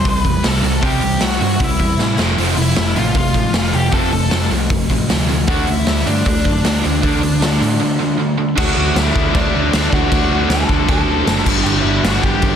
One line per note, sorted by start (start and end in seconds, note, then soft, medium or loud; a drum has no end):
0.05 0.20 C2 medium
0.05 0.23 C3 medium
0.05 0.23 G3 medium
0.05 0.43 B4 medium
0.05 kick loud
0.05 open hi-hat medium
0.09 0.47 B5 loud
0.24 0.40 E2 medium
0.24 0.41 C3 medium
0.24 0.42 G3 medium
0.24 kick medium
0.24 open hi-hat soft
0.43 0.59 C2 medium
0.43 0.61 C3 medium
0.43 0.61 G3 medium
0.43 0.81 A4 medium
0.43 snare loud
0.43 open hi-hat medium
0.48 0.85 A5 medium
0.63 0.78 C2 medium
0.63 0.80 C3 medium
0.63 0.81 G3 medium
0.63 open hi-hat medium
0.82 0.98 C2 medium
0.82 1.00 C3 medium
0.82 1.01 G3 medium
0.82 1.01 C4 medium
0.82 1.19 G4 medium
0.82 kick loud
0.82 open hi-hat medium
0.86 1.24 G5 medium
1.01 1.16 C2 medium
1.01 1.19 C3 medium
1.01 1.20 G3 medium
1.01 open hi-hat medium
1.20 1.36 C2 medium
1.20 1.38 C3 medium
1.20 1.39 G3 medium
1.20 1.59 F#4 medium
1.20 snare loud
1.20 open hi-hat medium
1.27 1.64 F#5 medium
1.40 1.56 G2 medium
1.40 1.58 C3 medium
1.40 1.58 G3 medium
1.40 open hi-hat medium
1.59 1.75 C2 medium
1.59 1.77 C3 medium
1.59 1.77 G3 medium
1.59 2.15 E4 medium
1.59 kick loud
1.59 open hi-hat medium
1.64 2.16 E5 medium
1.79 1.95 E2 medium
1.79 1.97 C3 medium
1.79 1.97 G3 medium
1.79 kick medium
1.79 open hi-hat medium
1.99 2.14 A2 loud
1.99 2.16 C3 medium
1.99 2.17 G3 medium
1.99 snare medium
2.19 2.34 F1 medium
2.19 2.36 F2 medium
2.19 2.37 C3 medium
2.19 2.37 F3 medium
2.19 2.37 A3 medium
2.19 2.37 C4 loud
2.19 snare medium
2.38 2.53 F1 medium
2.38 2.55 F2 medium
2.38 2.56 C3 medium
2.38 2.56 F3 medium
2.38 2.56 A3 medium
2.38 2.56 C4 medium
2.38 open hi-hat medium
2.56 2.72 F1 medium
2.56 2.74 F2 medium
2.56 2.74 C3 medium
2.56 2.75 F3 medium
2.56 2.75 A3 medium
2.56 2.94 E4 medium
2.56 open hi-hat medium
2.62 2.98 E5 medium
2.76 2.92 F1 medium
2.76 2.94 F2 medium
2.76 2.94 C3 medium
2.76 2.94 F3 medium
2.76 2.94 A3 medium
2.76 snare loud
2.76 open hi-hat medium
2.95 3.11 A1 medium
2.95 3.13 F2 medium
2.95 3.14 C3 medium
2.95 3.14 F3 medium
2.95 3.14 A3 medium
2.95 3.15 F4 medium
2.95 3.17 F5 medium
2.95 open hi-hat medium
3.15 3.30 F1 medium
3.15 3.33 F2 medium
3.15 3.33 C3 medium
3.15 3.33 F3 medium
3.15 3.33 A3 medium
3.15 3.70 F4 medium
3.15 kick loud
3.15 open hi-hat medium
3.19 3.77 F5 medium
3.34 3.49 A1 medium
3.34 3.52 F2 medium
3.34 3.52 C3 medium
3.34 3.52 F3 medium
3.34 3.52 A3 medium
3.34 kick medium
3.34 open hi-hat medium
3.53 3.69 F1 medium
3.53 3.71 F2 medium
3.53 3.71 C3 medium
3.53 3.72 F3 medium
3.53 3.72 A3 medium
3.53 snare loud
3.53 open hi-hat medium
3.73 3.89 F1 medium
3.73 3.91 F2 medium
3.73 3.91 C3 medium
3.73 3.90 F3 medium
3.73 3.91 A3 medium
3.73 3.92 G4 medium
3.73 3.93 G5 medium
3.73 open hi-hat medium
3.92 4.08 F1 medium
3.92 4.11 F2 medium
3.92 4.11 C3 loud
3.92 4.10 F3 medium
3.92 4.10 A3 medium
3.92 4.11 C4 loud
3.92 4.12 A4 medium
3.92 4.12 A5 loud
3.92 kick loud
3.92 open hi-hat medium
4.11 4.27 F1 medium
4.11 4.30 F2 medium
4.11 4.30 C3 medium
4.11 4.28 F3 medium
4.11 4.29 A3 medium
4.11 4.49 A4 medium
4.11 4.49 A5 medium
4.11 open hi-hat medium
4.30 4.47 F1 medium
4.30 4.49 F2 medium
4.30 4.49 C3 medium
4.30 4.48 F3 medium
4.30 4.48 A3 medium
4.30 snare loud
4.30 open hi-hat medium
4.51 4.66 C2 medium
4.51 4.68 F2 medium
4.51 4.68 C3 medium
4.51 4.68 F3 medium
4.51 4.69 A3 medium
4.51 open hi-hat medium
4.70 4.85 F1 medium
4.70 4.88 F2 medium
4.70 4.88 C3 medium
4.70 4.88 F3 medium
4.70 4.88 A3 medium
4.70 kick loud
4.70 open hi-hat medium
4.90 5.05 A1 medium
4.90 5.07 F2 medium
4.90 5.08 C3 medium
4.90 5.07 F3 medium
4.90 5.08 A3 medium
4.90 kick medium
4.90 open hi-hat medium
5.09 5.25 D2 medium
5.09 5.27 F2 medium
5.09 5.27 C3 medium
5.09 5.27 F3 medium
5.09 5.27 A3 medium
5.09 snare loud
5.09 open hi-hat medium
5.29 5.44 D2 medium
5.29 5.46 F2 medium
5.29 5.46 C3 medium
5.29 5.47 F3 medium
5.29 5.47 A3 medium
5.29 open hi-hat medium
5.47 5.63 D2 medium
5.47 5.67 D3 medium
5.47 5.67 A3 loud
5.47 5.67 D4 loud
5.47 5.66 F#4 medium
5.47 5.68 F#5 medium
5.47 kick loud
5.47 open hi-hat medium
5.67 5.83 D2 medium
5.67 5.85 D3 medium
5.67 5.86 A3 medium
5.67 6.09 E5 loud
5.67 open hi-hat medium
5.72 6.06 E4 medium
5.87 6.02 D2 medium
5.87 6.05 D3 medium
5.87 6.05 A3 medium
5.87 snare loud
5.87 open hi-hat medium
6.06 6.21 G2 medium
6.06 6.25 D3 medium
6.06 6.24 A3 medium
6.06 6.25 D4 medium
6.06 6.26 D5 medium
6.06 open hi-hat medium
6.26 6.41 D2 medium
6.26 6.43 D3 medium
6.26 6.43 A3 medium
6.26 8.16 D4 medium
6.26 8.16 D5 medium
6.26 kick loud
6.26 open hi-hat medium
6.45 6.60 F#2 medium
6.45 6.63 D3 medium
6.45 6.63 A3 medium
6.45 kick medium
6.45 open hi-hat medium
6.64 6.80 D2 medium
6.64 6.82 D3 medium
6.64 6.82 A3 medium
6.64 snare loud
6.64 open hi-hat medium
6.84 6.99 D2 medium
6.84 7.01 D3 medium
6.84 7.01 A3 medium
6.84 open hi-hat medium
7.02 7.19 D2 medium
7.02 7.20 D3 medium
7.02 7.21 A3 medium
7.02 7.21 D4 medium
7.02 kick loud
7.02 open hi-hat medium
7.21 7.37 D2 medium
7.21 7.39 D3 medium
7.21 7.40 A3 medium
7.21 open hi-hat medium
7.41 7.56 D2 medium
7.41 7.59 D3 medium
7.41 7.59 A3 medium
7.41 snare loud
7.41 open hi-hat medium
7.61 7.76 A2 medium
7.61 7.79 D3 medium
7.61 7.79 A3 medium
7.61 open hi-hat medium
7.80 7.98 D3 medium
7.80 7.98 A3 medium
8.00 8.17 D3 medium
8.00 8.18 A3 medium
8.19 8.37 D3 medium
8.19 8.37 A3 medium
8.38 8.55 D3 medium
8.38 8.56 A3 medium
8.56 8.70 D2 loud
8.56 9.16 D3 medium
8.56 9.15 F#3 loud
8.56 9.14 A3 loud
8.56 9.12 D4 loud
8.56 8.94 F#4 medium
8.56 8.97 F#5 medium
8.56 kick loud
8.56 crash loud
8.56 crash medium
8.77 8.89 D2 medium
8.96 9.08 D2 medium
8.96 9.37 E5 medium
8.96 snare loud
8.96 crash medium
9.00 9.34 E4 medium
9.13 9.28 D2 medium
9.13 9.69 D3 medium
9.13 9.70 F#3 medium
9.13 9.71 A3 medium
9.13 9.74 D4 medium
9.13 kick loud
9.33 9.47 D2 loud
9.33 10.08 D3 medium
9.33 10.09 A3 medium
9.33 10.11 D4 medium
9.33 9.89 D4 medium
9.33 9.95 D5 medium
9.33 kick loud
9.33 crash medium
9.55 9.67 D2 medium
9.70 10.09 D3 medium
9.70 10.10 F#3 medium
9.70 10.10 A3 medium
9.70 snare loud
9.70 crash medium
9.74 9.86 D2 loud
9.74 10.13 D4 medium
9.93 10.05 D2 medium
9.93 10.48 F#4 medium
9.93 10.53 F#5 loud
9.93 kick medium
10.10 10.24 D2 loud
10.10 10.67 D3 medium
10.10 10.68 F#3 medium
10.10 10.67 A3 medium
10.10 10.66 D4 loud
10.10 kick loud
10.10 crash medium
10.31 10.43 D2 medium
10.50 10.62 D2 loud
10.50 10.87 A4 medium
10.50 10.89 A5 loud
10.50 snare loud
10.50 crash medium
10.67 10.82 D2 medium
10.67 11.25 D3 medium
10.67 11.26 F#3 medium
10.67 11.26 A3 medium
10.67 11.25 D4 loud
10.67 kick medium
10.87 11.01 D2 medium
10.87 11.44 D3 medium
10.87 11.45 A3 medium
10.87 11.46 D4 medium
10.87 11.43 A5 loud
10.87 kick loud
10.87 crash medium
10.93 11.44 A4 medium
11.08 11.20 D2 medium
11.26 11.39 F#1 loud
11.26 11.45 D3 medium
11.26 11.45 F#3 medium
11.26 11.46 A3 medium
11.26 11.46 D4 medium
11.26 snare loud
11.26 crash medium
11.45 11.59 G1 medium
11.45 12.02 G2 medium
11.45 12.03 D3 medium
11.45 12.05 G3 loud
11.45 12.06 B3 loud
11.45 12.04 D4 medium
11.45 kick loud
11.45 crash loud
11.64 11.78 G1 loud
11.64 11.71 G4 medium
11.64 11.69 G5 loud
11.64 crash medium
11.82 11.96 G1 loud
11.82 12.02 E4 medium
11.82 12.01 E5 medium
12.01 12.16 G1 loud
12.01 12.56 G2 medium
12.01 12.56 D3 medium
12.01 12.56 G3 medium
12.01 12.22 F#4 medium
12.01 12.23 F#5 medium
12.01 snare loud
12.01 crash medium
12.06 12.56 B3 medium
12.06 12.56 D4 medium
12.23 12.36 G1 medium
12.23 12.56 G2 medium
12.23 12.56 D3 medium
12.23 12.56 G3 medium
12.23 12.56 G4 medium
12.23 12.56 G5 loud
12.23 kick loud
12.42 12.55 G1 medium
12.42 kick loud
12.42 crash medium